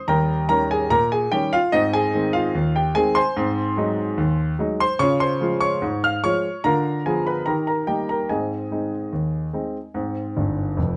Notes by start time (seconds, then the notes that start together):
0.08 D#2 G3 A#4 G5 A#5
0.49 D#3 G3 C#4 A#4 A#5
0.71 G#4 G#5
0.90 A#2 A#4 A#5
1.12 G#4 G#5
1.32 D#3 G3 C#4 G4 G5
1.53 F4 F5
1.72 G#2 C4 D#4 D#5
1.93 G#4 G#5
2.13 D#3 G#3 C4
2.33 F4 F5
2.55 D#2
2.76 G4 G5
2.95 D#3 G#3 C4 G#4 G#5
3.15 C5 G#5 C6
3.37 G#2 C4
3.77 F#3 G#3 D#4
4.18 D#2
4.59 F#3 G#3 D#4
4.80 C5 C6
4.99 C#3 F4 C#5 C#6
5.20 C5 C6
5.40 F3 G#3 F4
5.61 C#5 C#6
5.82 G#2
6.04 F5 F6
6.23 F3 G#3 F4 C#5 C#6
6.64 D3 F4 A#4 F5 A#5
7.06 F3 B3 F4 G#4 G#5
7.27 B4 B5
7.46 D#3 G4 A#4 A#5
7.67 A#4 A#5
7.87 G3 A#3 D#4 G4 G5
8.09 A#4 A#5
8.29 G#2 C4 G#4 D#5 G#5
8.71 G#3 C4 D#4
9.13 D#2
9.53 G#3 C4 D#4
9.94 G#2 C4
10.36 G1 G2
10.77 F1 F2